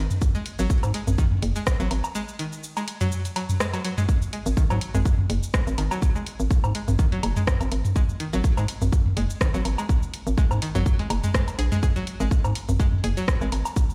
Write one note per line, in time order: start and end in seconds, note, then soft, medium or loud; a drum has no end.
0.10 mid tom medium
0.10 cabasa soft
0.21 kick loud
0.21 cabasa medium
0.35 0.42 G#3 medium
0.35 cabasa soft
0.46 open hi-hat medium
0.59 0.68 G#1 loud
0.59 0.67 F#3 loud
0.59 cabasa soft
0.70 kick loud
0.70 cabasa medium
0.83 0.92 G#2 medium
0.83 cabasa soft
0.83 low woodblock medium
0.94 1.00 G#3 medium
0.94 open hi-hat medium
1.07 1.17 G#1 medium
1.07 mid tom medium
1.07 cabasa soft
1.18 1.24 D#3 medium
1.18 kick loud
1.18 cabasa medium
1.32 mid tom medium
1.42 1.54 F#1 loud
1.42 open hi-hat medium
1.56 1.63 G#3 medium
1.56 cabasa soft
1.67 kick loud
1.67 cross-stick loud
1.67 cabasa medium
1.80 1.89 G#1 loud
1.80 1.87 F#3 loud
1.80 cabasa soft
1.91 2.02 G#1 loud
1.91 open hi-hat medium
1.91 low woodblock soft
2.04 cabasa soft
2.04 low woodblock medium
2.15 2.21 G#3 medium
2.15 cabasa medium
2.28 cabasa soft
2.39 2.45 D#3 medium
2.39 open hi-hat medium
2.52 cabasa soft
2.63 cabasa medium
2.77 2.84 G#3 medium
2.77 cabasa soft
2.77 low woodblock medium
2.88 open hi-hat medium
3.01 3.08 F#3 loud
3.01 mid tom medium
3.01 cabasa soft
3.12 cabasa medium
3.25 open hi-hat soft
3.25 cabasa soft
3.36 3.42 F#3 medium
3.36 open hi-hat medium
3.36 low woodblock medium
3.49 mid tom medium
3.49 cabasa soft
3.60 3.64 G#3 medium
3.60 cross-stick loud
3.60 cabasa medium
3.74 3.81 F#3 medium
3.74 open hi-hat soft
3.74 cabasa soft
3.74 low woodblock medium
3.85 3.91 F#3 medium
3.85 open hi-hat medium
3.98 4.03 G#3 medium
3.98 mid tom medium
3.98 cabasa soft
4.09 kick loud
4.09 cabasa medium
4.22 cabasa soft
4.33 4.39 G#3 medium
4.33 open hi-hat medium
4.46 4.55 G#1 loud
4.46 cabasa soft
4.57 4.63 D#3 medium
4.57 kick loud
4.57 cabasa medium
4.70 4.80 G#2 medium
4.70 4.78 F#3 loud
4.70 cabasa soft
4.70 low woodblock medium
4.81 open hi-hat medium
4.94 5.04 G#1 loud
4.94 5.02 G#3 medium
4.94 mid tom medium
4.94 cabasa soft
5.05 kick loud
5.05 cabasa medium
5.19 mid tom medium
5.30 5.41 F#1 loud
5.30 open hi-hat medium
5.43 cabasa soft
5.54 5.60 G#3 medium
5.54 kick loud
5.54 cross-stick loud
5.54 cabasa medium
5.67 5.76 G#1 loud
5.67 cabasa soft
5.78 5.89 G#1 medium
5.78 5.84 D#3 medium
5.78 open hi-hat medium
5.78 low woodblock medium
5.91 5.99 F#3 loud
5.91 cabasa soft
5.91 low woodblock medium
6.02 kick loud
6.02 cabasa medium
6.16 6.23 G#3 medium
6.16 cabasa soft
6.26 open hi-hat medium
6.40 6.49 G#1 loud
6.40 cabasa soft
6.51 kick loud
6.51 cabasa medium
6.64 6.73 G#2 medium
6.64 cabasa soft
6.64 low woodblock medium
6.75 6.81 G#3 medium
6.75 open hi-hat medium
6.88 6.97 G#1 loud
6.88 mid tom medium
6.88 cabasa soft
6.99 7.05 D#3 medium
6.99 kick loud
6.99 cabasa medium
7.12 7.20 F#3 loud
7.12 open hi-hat soft
7.23 7.34 F#1 loud
7.23 open hi-hat loud
7.23 low woodblock medium
7.36 7.44 G#3 medium
7.36 mid tom medium
7.36 cabasa soft
7.47 kick loud
7.47 cross-stick loud
7.47 cabasa medium
7.61 7.70 G#1 loud
7.61 open hi-hat soft
7.61 cabasa soft
7.61 low woodblock medium
7.72 7.83 G#1 medium
7.72 open hi-hat medium
7.85 mid tom medium
7.85 cabasa soft
7.96 8.02 G#3 medium
7.96 kick loud
7.96 cabasa medium
8.09 cabasa soft
8.20 8.26 D#3 medium
8.20 open hi-hat medium
8.33 8.42 G#1 loud
8.33 8.41 F#3 loud
8.33 cabasa soft
8.44 kick loud
8.44 cabasa soft
8.57 8.67 G#2 medium
8.57 8.65 G#3 medium
8.57 cabasa soft
8.57 low woodblock medium
8.68 open hi-hat loud
8.82 8.91 G#1 loud
8.82 mid tom medium
8.82 cabasa soft
8.92 kick loud
8.92 cabasa medium
9.06 mid tom medium
9.17 9.28 F#1 loud
9.17 9.23 G#3 medium
9.17 open hi-hat loud
9.30 cabasa soft
9.41 9.47 D#3 medium
9.41 kick loud
9.41 cross-stick loud
9.41 cabasa soft
9.54 9.63 G#1 loud
9.54 9.62 F#3 loud
9.54 cabasa soft
9.65 9.76 G#1 loud
9.65 open hi-hat medium
9.65 low woodblock medium
9.78 9.86 G#3 medium
9.78 cabasa soft
9.78 low woodblock medium
9.89 kick loud
9.89 cabasa soft
10.03 cabasa soft
10.14 open hi-hat medium
10.27 10.36 G#1 loud
10.27 cabasa soft
10.38 10.44 G#3 medium
10.38 kick loud
10.38 cabasa soft
10.51 10.60 G#2 medium
10.51 cabasa soft
10.51 low woodblock medium
10.62 10.68 D#3 medium
10.62 open hi-hat loud
10.75 10.84 G#1 medium
10.75 10.83 F#3 loud
10.75 mid tom medium
10.75 cabasa soft
10.86 kick loud
10.86 cabasa soft
10.99 11.07 G#3 medium
10.99 open hi-hat soft
11.10 11.21 F#1 loud
11.10 open hi-hat loud
11.10 low woodblock medium
11.23 11.31 G#3 medium
11.23 mid tom medium
11.23 cabasa soft
11.34 11.43 G#3 medium
11.34 kick loud
11.34 cross-stick loud
11.34 cabasa medium
11.48 open hi-hat soft
11.48 cabasa soft
11.48 low woodblock medium
11.59 11.70 A#1 medium
11.59 11.65 G#4 medium
11.59 open hi-hat medium
11.72 11.79 G#3 loud
11.72 mid tom medium
11.72 cabasa soft
11.83 11.86 G#4 medium
11.83 kick loud
11.83 cabasa medium
11.96 12.04 F#3 loud
11.96 cabasa soft
12.07 open hi-hat medium
12.20 12.29 G#1 loud
12.20 12.28 G#3 medium
12.20 cabasa soft
12.31 kick loud
12.31 cabasa soft
12.44 12.54 G#2 medium
12.44 cabasa soft
12.44 low woodblock medium
12.55 open hi-hat medium
12.69 12.78 G#1 medium
12.69 mid tom medium
12.69 cabasa soft
12.80 12.86 G#3 medium
12.80 kick loud
12.80 cabasa soft
12.93 mid tom medium
13.04 13.15 F#1 loud
13.04 13.07 G#4 medium
13.04 open hi-hat loud
13.17 13.25 F#3 loud
13.17 cabasa soft
13.28 kick loud
13.28 cross-stick loud
13.28 cabasa medium
13.41 13.50 G#1 loud
13.41 13.49 G#3 medium
13.41 cabasa soft
13.52 13.63 G#1 medium
13.52 open hi-hat medium
13.52 low woodblock medium
13.65 cabasa soft
13.65 low woodblock medium
13.76 kick loud
13.76 cabasa medium
13.90 cabasa soft